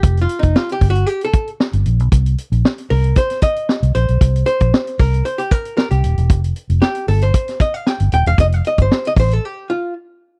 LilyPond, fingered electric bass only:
\new Staff \with { instrumentName = "Fingered electric bass" } { \clef bass \time 4/4 \key f \mixolydian \tempo 4 = 115 f,,8 r16 f,,16 r8 g,,8 r4 r16 g,,16 bes,,16 b,,16 | c,8 r16 bes,,16 r8 c,8 r4 r16 c,16 bes,,16 b,,16 | c,8 r16 bes,,16 r8 c,8 r4 r16 c,16 ees,,16 e,,16 | f,,8 r16 f,,16 r8 g,,8 r4 r16 g,,16 ees,,16 e,,16 |
f,,8 r16 g,,16 r8 a,,8 r2 | }